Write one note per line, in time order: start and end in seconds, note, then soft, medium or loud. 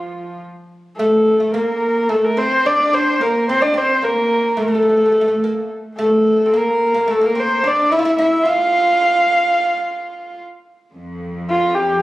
0.00 0.39 F3 medium
0.00 0.41 F3 medium
0.00 0.39 F4 medium
0.98 1.56 A3 medium
0.98 1.39 A3 medium
0.98 1.50 A4 medium
1.40 1.53 A3 medium
1.54 2.09 A#3 medium
1.54 2.02 A#3 medium
1.54 2.11 A#4 medium
2.02 2.11 A#3 medium
2.09 2.37 A3 medium
2.09 2.39 A3 medium
2.09 2.26 A4 medium
2.24 2.40 A#4 medium
2.37 2.65 C4 medium
2.37 2.66 C4 medium
2.37 2.68 C5 medium
2.65 3.21 D4 medium
2.65 2.93 D4 medium
2.65 2.96 D5 medium
2.93 3.21 C4 medium
2.93 3.24 C5 medium
3.20 3.50 A#3 medium
3.20 3.49 A#3 medium
3.20 3.49 A#4 medium
3.48 3.64 C4 medium
3.48 3.61 C4 medium
3.48 3.64 C5 medium
3.61 3.73 D4 medium
3.61 3.79 D4 medium
3.61 3.79 D5 medium
3.74 4.00 C4 medium
3.74 4.06 C5 medium
3.78 4.06 C4 medium
4.02 4.54 A#3 medium
4.02 4.61 A#3 medium
4.02 4.59 A#4 medium
4.57 4.65 A3 medium
4.57 5.70 A3 medium
4.62 4.73 A#4 medium
4.68 4.74 A3 soft
4.73 4.81 A3 medium
4.73 5.67 A4 medium
4.82 4.88 A3 soft
4.89 4.96 A3 soft
4.97 5.04 A3 soft
5.06 5.11 A3 soft
5.12 5.19 A3 soft
5.21 5.27 A3 medium
5.28 5.35 A3 medium
5.44 5.68 A#3 medium
5.97 6.54 A3 medium
5.97 6.47 A3 medium
5.97 6.58 A4 medium
6.46 6.52 C4 medium
6.52 7.10 A#3 medium
6.52 6.93 A#3 medium
6.57 7.12 A#4 medium
6.94 7.07 A#3 medium
7.08 7.20 A3 medium
7.08 7.22 A3 medium
7.08 7.27 A4 medium
7.21 7.65 A#3 medium
7.21 7.35 A#3 medium
7.26 7.41 A#4 medium
7.35 7.63 C4 medium
7.40 7.69 C5 medium
7.63 7.92 D4 medium
7.63 7.91 D4 medium
7.67 7.94 D5 medium
7.91 8.17 E4 medium
7.91 7.98 E4 medium
7.91 8.19 E5 loud
7.99 8.05 F4 medium
8.05 8.17 E4 medium
8.18 8.46 E4 medium
8.18 8.45 E4 medium
8.18 8.50 E5 medium
8.45 10.39 F4 medium
8.45 10.35 F4 medium
8.49 10.41 F5 loud
10.93 12.02 F2 medium
11.50 11.77 F4 medium
11.75 12.02 G4 medium